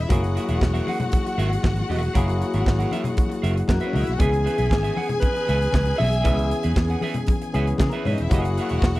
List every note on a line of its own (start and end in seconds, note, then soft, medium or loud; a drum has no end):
0.00 0.12 E3 medium
0.00 0.13 B3 medium
0.00 0.12 C#4 medium
0.00 0.10 E4 medium
0.00 0.12 G#4 medium
0.00 0.10 E5 loud
0.09 0.37 F#1 loud
0.09 2.10 F#3 medium
0.09 2.11 A#3 medium
0.09 2.11 E4 medium
0.09 3.60 F#4 medium
0.09 0.26 G#4 medium
0.09 2.12 G#4 medium
0.09 0.23 A#4 medium
0.09 0.22 E5 medium
0.09 3.60 F#5 loud
0.09 kick loud
0.09 closed hi-hat medium
0.09 muted conga soft
0.09 low conga medium
0.23 muted clean electric guitar stroke soft
0.23 closed hi-hat soft
0.35 0.48 G#4 medium
0.35 0.48 A#4 medium
0.35 0.47 E5 medium
0.35 closed hi-hat medium
0.49 0.58 E1 medium
0.49 0.60 G#4 medium
0.49 0.60 A#4 medium
0.49 0.60 E5 medium
0.49 closed hi-hat soft
0.61 0.79 E1 medium
0.61 muted clean electric guitar stroke soft
0.61 kick medium
0.61 snare loud
0.61 clap medium
0.61 muted conga soft
0.74 0.86 G#4 medium
0.74 0.87 A#4 medium
0.74 0.89 E5 medium
0.74 closed hi-hat soft
0.74 muted conga soft
0.87 1.00 G#4 medium
0.87 0.99 A#4 medium
0.87 0.99 F#5 medium
0.87 open hi-hat medium
0.87 high conga medium
1.00 muted clean electric guitar stroke soft
1.00 closed hi-hat soft
1.00 low conga medium
1.12 muted clean electric guitar stroke soft
1.12 kick loud
1.12 closed hi-hat medium
1.12 high conga medium
1.26 muted clean electric guitar stroke soft
1.26 closed hi-hat soft
1.26 muted conga soft
1.38 1.56 G#1 loud
1.38 1.54 G#4 loud
1.38 1.50 A#4 medium
1.38 1.49 E5 loud
1.38 closed hi-hat medium
1.50 muted clean electric guitar stroke soft
1.50 closed hi-hat soft
1.63 1.82 G#1 medium
1.63 muted clean electric guitar stroke soft
1.63 kick loud
1.63 snare loud
1.63 clap medium
1.63 muted conga soft
1.63 high conga medium
1.76 muted clean electric guitar stroke soft
1.76 closed hi-hat soft
1.76 muted conga soft
1.76 high conga medium
1.89 2.07 E1 loud
1.89 2.09 G#4 medium
1.89 2.02 A#4 medium
1.89 2.00 E5 medium
1.89 open hi-hat medium
1.89 high conga medium
1.89 low conga medium
2.02 muted clean electric guitar stroke soft
2.02 closed hi-hat soft
2.14 2.42 F#1 loud
2.14 4.16 F#3 medium
2.14 4.16 A#3 medium
2.14 4.17 E4 medium
2.14 2.30 G#4 medium
2.14 4.17 G#4 medium
2.14 2.27 A#4 medium
2.14 2.26 E5 medium
2.14 kick loud
2.14 closed hi-hat medium
2.14 muted conga soft
2.14 low conga medium
2.27 muted clean electric guitar stroke medium
2.27 closed hi-hat soft
2.27 muted conga soft
2.40 muted clean electric guitar stroke soft
2.40 closed hi-hat medium
2.54 2.63 G#1 loud
2.54 2.66 G#4 medium
2.54 2.66 A#4 medium
2.54 2.66 E5 medium
2.54 closed hi-hat soft
2.66 2.84 G#1 medium
2.66 muted clean electric guitar stroke soft
2.66 kick medium
2.66 snare medium
2.66 clap medium
2.66 muted conga soft
2.79 2.90 G#4 medium
2.79 2.91 A#4 medium
2.79 2.92 F#5 medium
2.79 closed hi-hat soft
2.79 muted conga soft
2.91 3.08 G#4 medium
2.91 3.04 A#4 medium
2.91 3.03 E5 loud
2.91 closed hi-hat medium
2.91 high conga medium
3.04 muted clean electric guitar stroke soft
3.04 closed hi-hat medium
3.04 low conga medium
3.17 muted clean electric guitar stroke soft
3.17 kick loud
3.17 closed hi-hat medium
3.17 high conga medium
3.29 muted clean electric guitar stroke medium
3.29 closed hi-hat soft
3.29 muted conga soft
3.42 3.61 F#1 loud
3.42 3.59 G#4 medium
3.42 3.56 A#4 medium
3.42 3.55 E5 loud
3.42 closed hi-hat medium
3.56 muted clean electric guitar stroke soft
3.56 closed hi-hat soft
3.68 3.78 F#2 loud
3.68 3.78 A#3 medium
3.68 4.21 F#4 medium
3.68 3.77 A#4 medium
3.68 muted clean electric guitar stroke soft
3.68 kick medium
3.68 snare medium
3.68 clap medium
3.68 muted conga soft
3.68 high conga medium
3.78 3.86 B3 medium
3.78 3.94 A#4 medium
3.78 3.86 B4 medium
3.78 3.95 E5 medium
3.78 closed hi-hat soft
3.78 high conga medium
3.83 3.95 C#4 medium
3.83 3.93 G#4 medium
3.83 3.95 C#5 medium
3.93 4.04 C#2 medium
3.93 4.03 D#4 medium
3.93 4.07 G#4 medium
3.93 4.07 A#4 medium
3.93 4.03 D#5 medium
3.93 4.05 E5 medium
3.93 open hi-hat medium
3.93 high conga medium
3.93 low conga medium
4.02 4.11 E4 medium
4.02 4.11 E5 medium
4.07 4.17 B1 medium
4.07 muted clean electric guitar stroke soft
4.07 closed hi-hat soft
4.12 4.20 F#4 medium
4.12 4.20 F#5 medium
4.18 4.47 C#2 medium
4.18 6.20 E3 medium
4.18 6.21 B3 medium
4.18 6.21 C#4 medium
4.18 4.36 G#4 medium
4.18 4.69 G#4 loud
4.18 7.70 G#4 medium
4.18 6.22 G#4 medium
4.18 4.32 B4 medium
4.18 4.31 E5 medium
4.18 7.70 G#5 loud
4.18 kick loud
4.18 closed hi-hat medium
4.18 muted conga soft
4.18 low conga medium
4.32 muted clean electric guitar stroke soft
4.32 closed hi-hat soft
4.32 muted conga soft
4.44 4.58 G#4 medium
4.44 4.58 B4 medium
4.44 4.57 E5 medium
4.44 closed hi-hat medium
4.58 4.71 B1 medium
4.58 4.70 G#4 soft
4.58 4.70 B4 medium
4.58 4.71 E5 medium
4.58 closed hi-hat soft
4.69 4.89 G#1 medium
4.69 5.18 G#4 medium
4.69 muted clean electric guitar stroke soft
4.69 kick medium
4.69 snare loud
4.69 muted conga soft
4.73 clap medium
4.83 4.94 G#4 medium
4.83 4.95 B4 medium
4.83 4.97 E5 medium
4.83 closed hi-hat soft
4.95 5.09 G#4 medium
4.95 5.09 B4 medium
4.95 5.09 F#5 medium
4.95 open hi-hat medium
4.95 high conga medium
5.09 muted clean electric guitar stroke medium
5.09 closed hi-hat soft
5.09 low conga medium
5.20 5.94 B4 loud
5.20 muted clean electric guitar stroke soft
5.20 kick loud
5.20 closed hi-hat medium
5.20 muted conga soft
5.20 high conga medium
5.34 muted clean electric guitar stroke medium
5.34 closed hi-hat soft
5.34 muted conga soft
5.47 5.66 C#2 medium
5.47 5.64 G#4 medium
5.47 5.60 B4 medium
5.47 5.58 E5 medium
5.47 closed hi-hat medium
5.59 muted clean electric guitar stroke soft
5.59 closed hi-hat soft
5.72 5.92 C#2 medium
5.72 muted clean electric guitar stroke soft
5.72 kick loud
5.72 snare loud
5.72 clap medium
5.72 high conga medium
5.85 muted clean electric guitar stroke soft
5.85 closed hi-hat soft
5.85 muted conga soft
5.85 high conga medium
5.96 6.25 B1 medium
5.96 6.14 G#4 medium
5.96 6.10 B4 medium
5.96 6.72 E5 loud
5.96 6.09 E5 medium
5.96 high conga medium
5.96 low conga medium
6.01 open hi-hat medium
6.10 muted clean electric guitar stroke soft
6.10 closed hi-hat soft
6.22 6.52 C#2 loud
6.22 7.51 E3 medium
6.22 7.51 B3 medium
6.22 6.40 G#4 medium
6.22 6.37 B4 medium
6.22 6.36 E5 medium
6.22 kick loud
6.22 closed hi-hat medium
6.22 muted conga soft
6.22 low conga medium
6.26 7.52 C#4 medium
6.26 7.52 G#4 medium
6.37 muted clean electric guitar stroke soft
6.37 closed hi-hat soft
6.37 muted conga soft
6.50 muted clean electric guitar stroke soft
6.50 closed hi-hat medium
6.63 6.73 E2 medium
6.63 6.75 G#4 medium
6.63 6.76 B4 medium
6.63 6.76 E5 medium
6.63 closed hi-hat soft
6.76 6.94 E2 medium
6.76 muted clean electric guitar stroke soft
6.76 kick loud
6.76 snare loud
6.76 clap medium
6.76 muted conga soft
6.89 7.01 G#4 soft
6.89 7.02 B4 medium
6.89 7.02 F#5 medium
6.89 closed hi-hat soft
6.89 muted conga soft
7.01 7.18 G#4 medium
7.01 7.16 B4 loud
7.01 7.14 E5 loud
7.01 open hi-hat medium
7.01 high conga medium
7.14 muted clean electric guitar stroke soft
7.14 closed hi-hat soft
7.14 low conga medium
7.27 muted clean electric guitar stroke soft
7.27 kick loud
7.27 closed hi-hat medium
7.27 muted conga soft
7.27 high conga medium
7.42 muted clean electric guitar stroke soft
7.42 closed hi-hat soft
7.53 7.72 C#2 medium
7.53 8.30 E3 medium
7.53 8.30 B3 soft
7.53 8.31 C#4 medium
7.53 7.70 G#4 medium
7.53 8.31 G#4 medium
7.53 7.67 B4 medium
7.53 7.66 E5 medium
7.53 closed hi-hat medium
7.67 muted clean electric guitar stroke soft
7.67 closed hi-hat soft
7.78 7.89 C#3 loud
7.78 7.88 G#3 medium
7.78 7.88 G#4 medium
7.78 muted clean electric guitar stroke soft
7.78 kick loud
7.78 snare loud
7.78 clap medium
7.78 muted conga soft
7.78 high conga medium
7.89 7.97 A#3 medium
7.89 7.98 A#4 medium
7.89 8.06 E5 medium
7.89 closed hi-hat soft
7.89 high conga soft
7.93 8.05 B3 medium
7.93 8.04 G#4 medium
7.93 8.05 B4 medium
8.05 8.15 G#2 medium
8.05 8.13 C#4 medium
8.05 8.18 G#4 medium
8.05 8.18 B4 medium
8.05 8.14 C#5 medium
8.05 8.18 E5 medium
8.05 open hi-hat medium
8.05 high conga medium
8.05 low conga medium
8.13 8.22 D#4 medium
8.13 8.22 D#5 medium
8.18 8.28 E1 medium
8.18 8.30 E4 medium
8.18 muted clean electric guitar stroke soft
8.18 closed hi-hat medium
8.22 8.31 E5 medium
8.30 8.58 F#1 loud
8.30 9.00 F#3 medium
8.30 9.00 A#3 medium
8.30 9.00 E4 medium
8.30 9.00 F#4 medium
8.30 8.38 G4 medium
8.30 8.52 G#4 medium
8.30 8.44 A#4 medium
8.30 9.00 F#5 loud
8.30 kick loud
8.30 closed hi-hat medium
8.30 muted conga soft
8.30 low conga medium
8.34 8.44 E5 medium
8.39 9.00 G#4 medium
8.44 muted clean electric guitar stroke medium
8.44 closed hi-hat medium
8.44 muted conga soft
8.58 8.70 G#4 medium
8.58 8.70 A#4 medium
8.58 8.69 E5 medium
8.58 closed hi-hat medium
8.69 8.79 E1 medium
8.69 8.82 G#4 medium
8.69 8.83 A#4 medium
8.69 8.82 E5 medium
8.69 closed hi-hat soft
8.82 9.00 E1 medium
8.82 muted clean electric guitar stroke soft
8.82 kick loud
8.82 snare loud
8.82 clap medium
8.95 9.00 E5 medium
8.95 closed hi-hat soft
8.95 muted conga soft